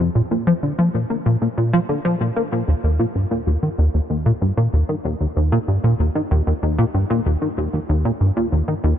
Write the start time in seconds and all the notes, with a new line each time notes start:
0.15 A#2
0.31 A#2
0.47 F3
0.63 D3
0.79 F3
0.94 A#2
1.10 A#3
1.26 A#2
1.42 A#2
1.58 A#2
1.73 F3
1.89 D3
2.05 F3
2.21 A#2
2.36 A#3
2.52 A#2
2.68 D#2
2.84 D#2
2.99 A#2
3.15 G2
3.31 A#2
3.47 D#2
3.63 D#3
3.78 D#2
3.94 D#2
4.10 D#2
4.26 A#2
4.42 G2
4.57 A#2
4.73 D#2
4.89 D#3
5.05 D#2
5.21 D#2
5.36 D#2
5.52 A#2
5.68 G2
5.84 A#2
6.00 D#2
6.15 D#3
6.31 D#2
6.47 D#2
6.63 D#2
6.79 A#2
6.94 G2
7.10 A#2
7.26 D#2
7.42 D#3
7.58 D#2
7.73 D#2
7.89 D#2
8.05 A#2
8.21 G2
8.37 A#2
8.52 D#2
8.68 D#3
8.84 D#2